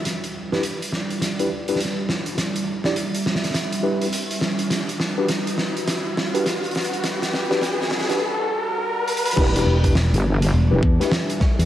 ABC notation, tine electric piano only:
X:1
M:4/4
L:1/16
Q:"Swing 16ths" 1/4=103
K:Em
V:1 name="Tine electric piano"
z3 [DEGB] z4 z [DEGB] z [DEGB] z4 | z3 [DEGd] z6 [DEGB] z4 z | z3 [DFGB] z6 z [DFGB] z4 | z3 [DFGB] z3 [DFGB] z8 |
[DEGB]3 [DEGB] z4 z [DEGB] z [DEGB] z4 |]